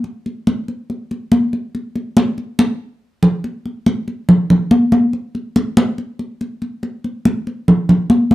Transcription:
0.04 high conga soft
0.26 high conga soft
0.47 high conga medium
0.68 high conga soft
0.90 high conga soft
1.11 high conga soft
1.32 high conga medium
1.53 high conga soft
1.75 high conga soft
1.96 high conga soft
2.17 high conga loud
2.38 high conga soft
2.59 high conga medium
3.23 low conga medium
3.44 high conga soft
3.66 high conga soft
3.86 high conga medium
4.08 high conga soft
4.29 high conga soft
4.29 low conga medium
4.50 high conga soft
4.50 low conga medium
4.71 high conga medium
4.92 high conga medium
5.13 high conga soft
5.35 high conga soft
5.56 high conga medium
5.77 high conga medium
5.98 high conga soft
6.19 high conga soft
6.41 high conga soft
6.62 high conga soft
6.83 high conga soft
7.04 high conga soft
7.25 high conga medium
7.47 high conga soft
7.68 high conga soft
7.68 low conga medium
7.89 high conga soft
7.89 low conga medium
8.10 high conga medium
8.31 high conga medium

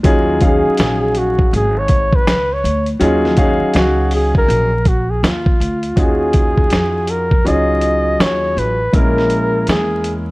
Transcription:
0.03 0.62 D#2 medium
0.03 0.37 F#3 medium
0.03 0.37 C#4 medium
0.03 0.38 D#4 medium
0.03 0.38 F4 medium
0.03 0.38 G#4 loud
0.03 kick loud
0.03 closed hi-hat loud
0.41 1.72 F#3 medium
0.41 1.73 C#4 medium
0.41 1.73 D#4 medium
0.41 1.73 G#4 medium
0.41 1.19 G#4 medium
0.41 1.73 F5 medium
0.41 kick medium
0.41 closed hi-hat medium
0.65 muted upright bass stroke soft
0.77 1.49 A#1 medium
0.77 snare loud
0.77 closed hi-hat medium
1.15 1.54 F#4 medium
1.15 closed hi-hat medium
1.39 kick medium
1.53 2.23 G#1 loud
1.53 1.80 G#4 loud
1.53 closed hi-hat medium
1.79 2.17 C#5 loud
1.88 kick medium
1.88 closed hi-hat medium
2.13 2.55 B4 loud
2.13 kick medium
2.27 2.62 C#2 medium
2.27 snare loud
2.27 closed hi-hat medium
2.53 2.89 C#5 medium
2.64 2.99 D2 medium
2.64 closed hi-hat medium
2.86 closed hi-hat soft
3.00 3.58 D#2 medium
3.00 3.33 F#3 medium
3.00 3.33 C#4 medium
3.00 3.34 D#4 medium
3.00 3.34 F4 medium
3.00 3.34 G#4 loud
3.00 closed hi-hat medium
3.25 snare soft
3.37 4.69 F#3 medium
3.37 4.69 C#4 medium
3.37 4.69 D#4 medium
3.37 4.69 G#4 loud
3.37 4.69 F5 medium
3.37 kick medium
3.37 closed hi-hat medium
3.62 muted upright bass stroke soft
3.74 4.45 C#2 loud
3.74 4.11 F#4 medium
3.74 snare medium
3.74 closed hi-hat medium
4.11 4.35 G#4 medium
4.11 open hi-hat medium
4.35 4.89 A#4 loud
4.35 kick medium
4.48 5.19 A#1 loud
4.48 closed hi-hat medium
4.85 5.12 F#4 loud
4.85 kick medium
4.85 closed hi-hat medium
5.10 5.26 G#4 loud
5.23 5.58 D#2 medium
5.23 5.98 F4 medium
5.23 snare loud
5.23 closed hi-hat medium
5.46 kick medium
5.60 5.95 D2 medium
5.60 closed hi-hat medium
5.83 closed hi-hat soft
5.96 6.67 D#2 loud
5.96 7.28 C#4 medium
5.96 7.28 D#4 medium
5.96 7.28 F4 medium
5.96 7.28 F#4 medium
5.96 7.28 G#4 medium
5.96 7.12 G#4 medium
5.96 kick loud
5.96 closed hi-hat medium
6.33 kick medium
6.33 closed hi-hat medium
6.58 kick medium
6.70 7.42 F2 medium
6.70 snare medium
6.70 closed hi-hat medium
7.07 7.49 A#4 medium
7.07 closed hi-hat medium
7.31 kick medium
7.45 8.16 C#2 medium
7.45 8.76 F#3 medium
7.45 8.76 C#4 medium
7.45 8.76 D#4 medium
7.45 8.77 F4 medium
7.45 8.77 G#4 medium
7.45 8.23 D#5 loud
7.45 closed hi-hat medium
7.81 closed hi-hat medium
8.20 8.55 D#2 medium
8.20 8.60 C#5 loud
8.20 snare loud
8.20 closed hi-hat medium
8.57 8.92 A1 medium
8.57 8.97 B4 medium
8.57 closed hi-hat medium
8.93 9.64 A#1 medium
8.93 10.24 G#3 medium
8.93 10.24 A#3 medium
8.93 10.24 C#4 medium
8.93 10.25 E4 medium
8.93 10.25 A#4 medium
8.93 9.69 A#4 medium
8.93 kick loud
8.93 closed hi-hat medium
9.18 snare soft
9.30 closed hi-hat medium
9.67 10.31 E2 medium
9.67 10.15 G#4 medium
9.67 snare medium
9.67 closed hi-hat medium
10.04 closed hi-hat medium

